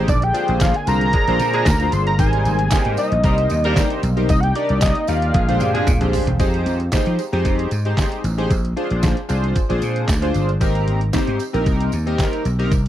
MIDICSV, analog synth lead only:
0, 0, Header, 1, 2, 480
1, 0, Start_track
1, 0, Tempo, 526316
1, 77, Time_signature, 4, 2, 24, 8
1, 11748, End_track
2, 0, Start_track
2, 0, Title_t, "Analog synth lead"
2, 0, Program_c, 0, 81
2, 84, Note_on_c, 0, 74, 89
2, 213, Note_on_c, 0, 79, 103
2, 226, Note_off_c, 0, 74, 0
2, 563, Note_on_c, 0, 77, 88
2, 577, Note_off_c, 0, 79, 0
2, 692, Note_on_c, 0, 80, 81
2, 706, Note_off_c, 0, 77, 0
2, 801, Note_off_c, 0, 80, 0
2, 806, Note_on_c, 0, 82, 114
2, 1762, Note_on_c, 0, 84, 105
2, 1776, Note_off_c, 0, 82, 0
2, 1882, Note_off_c, 0, 84, 0
2, 1888, Note_on_c, 0, 82, 109
2, 1991, Note_off_c, 0, 82, 0
2, 2003, Note_on_c, 0, 80, 108
2, 2683, Note_off_c, 0, 80, 0
2, 2721, Note_on_c, 0, 75, 89
2, 3332, Note_off_c, 0, 75, 0
2, 3332, Note_on_c, 0, 74, 89
2, 3642, Note_off_c, 0, 74, 0
2, 3921, Note_on_c, 0, 75, 92
2, 4015, Note_on_c, 0, 78, 72
2, 4029, Note_off_c, 0, 75, 0
2, 4046, Note_on_c, 0, 79, 104
2, 4060, Note_off_c, 0, 78, 0
2, 4152, Note_off_c, 0, 79, 0
2, 4157, Note_on_c, 0, 74, 90
2, 4380, Note_off_c, 0, 74, 0
2, 4393, Note_on_c, 0, 75, 90
2, 4632, Note_on_c, 0, 77, 97
2, 4646, Note_off_c, 0, 75, 0
2, 5594, Note_off_c, 0, 77, 0
2, 11748, End_track
0, 0, End_of_file